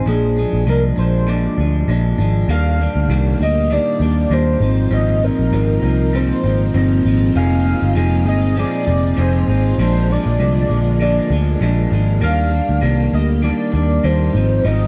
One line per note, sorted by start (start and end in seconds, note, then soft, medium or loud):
0.06 0.44 A#1 loud
0.06 0.37 A#2 medium
0.06 0.37 F3 medium
0.06 0.37 G#3 medium
0.06 0.35 D4 medium
0.06 0.64 G#4 medium
0.36 0.66 F3 soft
0.36 0.67 G#3 medium
0.36 0.67 D4 medium
0.53 0.64 A#1 medium
0.66 0.91 C2 medium
0.66 0.97 A#2 medium
0.66 0.98 F3 medium
0.66 0.97 G#3 medium
0.66 0.95 D4 medium
0.66 0.82 A#4 medium
0.96 1.46 A#1 medium
0.96 1.26 F3 soft
0.96 1.27 G#3 soft
0.96 1.27 D4 medium
0.96 1.31 C5 medium
1.27 1.58 A#2 medium
1.27 1.58 F3 medium
1.27 1.58 G#3 medium
1.27 1.56 D4 medium
1.27 1.89 D5 medium
1.57 1.83 D2 medium
1.57 1.88 F3 soft
1.57 1.89 G#3 soft
1.57 1.88 D4 medium
1.88 2.13 A#1 medium
1.88 2.19 A#2 medium
1.88 2.19 F3 medium
1.88 2.19 G#3 medium
1.88 2.17 D4 medium
2.18 2.43 G#1 medium
2.18 2.49 F3 soft
2.18 2.50 G#3 medium
2.18 2.49 D4 medium
2.48 2.86 D#2 loud
2.48 9.75 A#2 medium
2.48 2.80 D#3 medium
2.48 2.80 G3 medium
2.48 4.60 A#3 medium
2.48 2.80 A#3 medium
2.48 2.78 D4 medium
2.48 4.60 G4 medium
2.48 3.07 F5 loud
2.79 3.09 G3 soft
2.79 3.10 A#3 soft
2.79 3.10 D4 medium
2.96 3.07 D2 medium
3.08 3.33 C2 loud
3.08 3.40 D#3 medium
3.08 3.41 G3 medium
3.08 3.40 A#3 medium
3.08 3.41 D4 medium
3.40 3.78 D2 medium
3.40 3.70 G3 soft
3.40 3.71 A#3 soft
3.40 3.74 D#5 loud
3.70 4.01 D#3 medium
3.70 4.01 G3 medium
3.70 4.00 A#3 medium
3.70 3.99 D4 medium
3.70 4.35 D5 loud
4.00 4.25 D#2 medium
4.00 4.30 G3 soft
4.00 4.31 A#3 medium
4.00 4.31 D4 medium
4.30 4.55 D#2 medium
4.30 4.62 D#3 medium
4.30 4.62 G3 medium
4.30 4.62 A#3 medium
4.30 4.60 D4 medium
4.30 4.95 C5 medium
4.61 4.86 G#1 medium
4.61 4.90 F3 soft
4.61 12.18 G#3 medium
4.61 9.75 C4 medium
4.61 4.91 C4 soft
4.61 4.92 D#4 medium
4.61 12.18 F4 loud
4.91 5.29 G#1 loud
4.91 5.22 G#2 medium
4.91 5.22 F3 medium
4.91 5.22 C4 medium
4.91 5.20 D#4 medium
4.91 5.26 D#5 loud
5.22 5.52 F3 soft
5.22 5.52 C4 soft
5.22 5.53 D#4 medium
5.22 6.17 A#4 loud
5.39 5.50 A#1 medium
5.52 5.77 G#1 medium
5.52 5.83 G#2 medium
5.52 5.84 F3 medium
5.52 5.83 C4 medium
5.52 5.81 D#4 medium
5.83 6.32 C2 medium
5.83 6.13 F3 soft
5.83 6.14 C4 medium
5.83 6.14 D#4 medium
6.13 6.44 G#2 medium
6.13 6.45 F3 medium
6.13 6.44 C4 medium
6.13 6.43 D#4 medium
6.13 6.76 C5 medium
6.44 6.69 G#1 medium
6.44 6.73 F3 soft
6.44 6.74 C4 medium
6.44 6.75 D#4 medium
6.74 6.99 G1 loud
6.74 7.05 F3 medium
6.74 7.05 C4 medium
6.74 7.03 D#4 medium
7.04 7.30 G#1 medium
7.04 7.34 F3 medium
7.04 7.34 C4 medium
7.04 7.35 D#4 medium
7.35 7.74 F1 loud
7.35 7.66 F3 medium
7.35 7.66 C4 medium
7.35 7.65 D#4 medium
7.35 7.64 G#4 medium
7.35 7.93 F5 loud
7.65 7.95 C4 soft
7.65 7.96 D#4 soft
7.65 7.96 G#4 medium
7.82 7.94 G1 medium
7.95 8.26 F1 loud
7.95 8.26 F3 medium
7.95 8.27 C4 medium
7.95 8.26 D#4 medium
7.95 8.24 G#4 medium
8.26 8.64 G1 medium
8.26 8.56 C4 soft
8.26 8.57 D#4 medium
8.26 8.57 G#4 medium
8.26 8.56 D#5 loud
8.56 8.87 F3 medium
8.56 8.88 C4 medium
8.56 8.87 D#4 medium
8.56 8.85 G#4 medium
8.56 9.21 D5 loud
8.86 9.12 F1 medium
8.86 9.16 C4 soft
8.86 9.17 D#4 soft
8.86 9.17 G#4 medium
9.17 9.42 F1 medium
9.17 9.48 F3 medium
9.17 9.48 C4 medium
9.17 9.48 D#4 medium
9.17 9.47 G#4 medium
9.17 9.80 C5 medium
9.48 9.73 G#1 loud
9.48 9.80 C4 soft
9.48 9.79 D#4 soft
9.48 9.79 G#4 medium
9.78 10.16 A#1 loud
9.78 10.09 A#2 medium
9.78 12.19 D3 medium
9.78 10.10 F3 medium
9.78 10.09 G#3 medium
9.78 14.31 A#3 medium
9.78 10.08 D4 medium
9.78 10.14 C5 loud
10.09 10.39 F3 soft
10.09 10.39 G#3 medium
10.09 10.40 D4 medium
10.09 11.01 D5 loud
10.26 10.37 A#1 medium
10.39 10.64 C2 medium
10.39 10.70 A#2 medium
10.39 10.70 F3 medium
10.39 10.70 G#3 medium
10.39 10.68 D4 medium
10.69 11.19 A#1 medium
10.69 11.00 F3 soft
10.69 11.00 G#3 soft
10.69 11.00 D4 medium
11.00 11.30 A#2 medium
11.00 11.31 F3 medium
11.00 11.30 G#3 medium
11.00 11.29 D4 medium
11.00 11.58 D5 medium
11.30 11.55 D2 medium
11.30 11.61 F3 soft
11.30 11.62 G#3 soft
11.30 11.61 D4 medium
11.61 11.85 A#1 medium
11.61 11.92 A#2 medium
11.61 11.92 F3 medium
11.61 11.91 G#3 medium
11.61 11.90 D4 medium
11.91 12.23 G#1 medium
11.91 12.22 F3 soft
11.91 12.22 G#3 medium
11.91 12.22 D4 medium
12.21 12.60 D#2 loud
12.21 12.52 D#3 medium
12.21 12.52 G3 medium
12.21 14.87 G3 medium
12.21 12.52 A#3 medium
12.21 12.50 D4 medium
12.21 14.34 G4 medium
12.21 12.79 F5 loud
12.51 12.81 G3 soft
12.51 12.82 A#3 soft
12.51 12.82 D4 medium
12.69 12.80 D2 medium
12.81 13.07 C2 medium
12.81 13.13 D#3 medium
12.81 13.13 G3 medium
12.81 13.12 A#3 medium
12.81 13.14 D4 medium
13.13 13.51 D2 medium
13.13 13.42 G3 soft
13.13 13.43 A#3 medium
13.13 13.28 D#5 loud
13.42 13.73 D#3 medium
13.42 13.74 G3 medium
13.42 13.73 A#3 medium
13.42 13.71 D4 medium
13.42 14.06 D5 loud
13.72 13.98 D#2 medium
13.72 14.03 G3 soft
13.72 14.04 A#3 soft
13.72 14.03 D4 medium
14.04 14.29 D#2 medium
14.04 14.34 D#3 medium
14.04 14.35 G3 medium
14.04 14.35 A#3 medium
14.04 14.33 D4 medium
14.04 14.67 C5 medium
14.33 14.59 G#1 medium
14.33 14.63 F3 soft
14.33 14.87 G#3 medium
14.33 14.64 C4 medium
14.33 14.87 C4 medium
14.33 14.64 D#4 medium
14.33 14.87 F4 loud
14.64 14.87 G#1 loud
14.64 14.87 G#2 medium
14.64 14.87 F3 medium
14.64 14.87 C4 medium
14.64 14.87 D#4 medium
14.64 14.87 D#5 loud